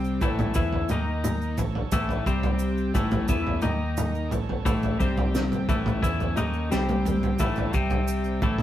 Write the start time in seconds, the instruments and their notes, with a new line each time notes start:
Already playing: fingered electric bass C2, clean electric guitar C3 G3 C4, transistor combo organ C3 G3 C4 G4 G5
0.04 maracas
0.20 fingered electric bass A1, clean electric guitar A2 E3 A3, transistor combo organ E3 A3 C#4 A4 C#5, kick, floor tom, maracas
0.39 floor tom, mid tom, maracas
0.54 fingered electric bass E2, clean electric guitar E3 B3 E4, kick, floor tom, maracas
0.73 floor tom
0.89 fingered electric bass D#2, transistor combo organ D#3 A#3 D#4 A#4 A#5, clean electric guitar D#3 A#3 D#4, mid tom, maracas
1.24 mid tom, maracas
1.42 maracas
1.57 fingered electric bass A1, clean electric guitar A2 E3, transistor combo organ E3 A3 C#4 A4 C#5, floor tom, maracas
1.75 floor tom
1.92 fingered electric bass A1, clean electric guitar A2 E3 A3, kick, floor tom, maracas
2.09 floor tom, maracas
2.25 fingered electric bass C2, clean electric guitar C3 G3 C4, transistor combo organ C3 G3 C4 G4 G5, kick, maracas
2.43 floor tom, maracas
2.59 maracas
2.77 maracas
2.94 fingered electric bass A1, clean electric guitar A2 E3 A3, transistor combo organ E3 A3 C#4 A4 C#5, kick, floor tom, maracas
3.11 floor tom, mid tom, maracas
3.28 fingered electric bass E2, clean electric guitar E3 B3 E4, kick, floor tom, maracas
3.47 floor tom
3.61 fingered electric bass D#2, clean electric guitar D#3 A#3 D#4, transistor combo organ D#3 A#3 D#4 A#4 A#5, mid tom, maracas
3.97 mid tom, maracas
4.15 maracas
4.28 transistor combo organ E3 A3 C#4 A4 C#5, floor tom, maracas
4.32 fingered electric bass A1, clean electric guitar A2 E3
4.49 floor tom
4.65 fingered electric bass A1, clean electric guitar A2 E3 A3, kick, floor tom, maracas
4.82 floor tom, maracas
4.99 fingered electric bass C2, clean electric guitar C3 G3 C4, transistor combo organ C3 G3 C4 G4 G5, kick, maracas
5.17 floor tom, maracas
5.35 snare, maracas
5.52 floor tom, maracas
5.69 fingered electric bass A1, clean electric guitar A2 E3 A3, transistor combo organ C#3 C#4 A4 C#5, kick, floor tom, maracas
5.86 floor tom, mid tom, maracas
6.02 fingered electric bass E2, clean electric guitar E3 B3 E4, kick, floor tom, maracas
6.20 floor tom, maracas
6.36 fingered electric bass D#2, clean electric guitar D#3 A#3 D#4, mid tom, maracas
6.53 maracas
6.71 fingered electric bass C2, clean electric guitar C3 G3 C4, transistor combo organ C3 G3 C4 G4 G5, snare, maracas
6.89 high tom, maracas
7.05 mid tom, maracas
7.23 floor tom, maracas
7.39 fingered electric bass A1, clean electric guitar A2 E3 A3, transistor combo organ E3 A3 A4 C#5, kick, floor tom, maracas
7.43 transistor combo organ C#4
7.56 floor tom, maracas
7.73 fingered electric bass C2, clean electric guitar C3 G3 C4, transistor combo organ C3, kick, maracas
7.77 transistor combo organ G3 C4 G4 G5
7.90 floor tom, maracas
8.08 maracas
8.24 maracas
8.42 fingered electric bass A1, clean electric guitar A2 E3 A3, transistor combo organ E3 A3 C#4 A4 C#5, kick, floor tom, maracas
8.58 floor tom, mid tom